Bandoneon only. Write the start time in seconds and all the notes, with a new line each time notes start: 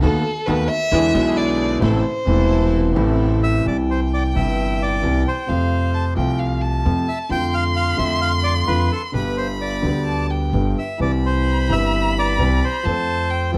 3.43 E5
3.67 D5
3.90 C5
4.14 D5
4.36 E5
4.82 D5
5.28 C5
7.08 E5
7.32 G5
7.54 F5
7.76 F5
7.98 E5
8.21 F5
8.44 D5
8.67 B4
8.92 A4
9.13 B4
9.37 C5
9.61 D5
10.79 E5
11.02 D5
11.26 C5
11.72 E5
12.19 D5
12.64 C5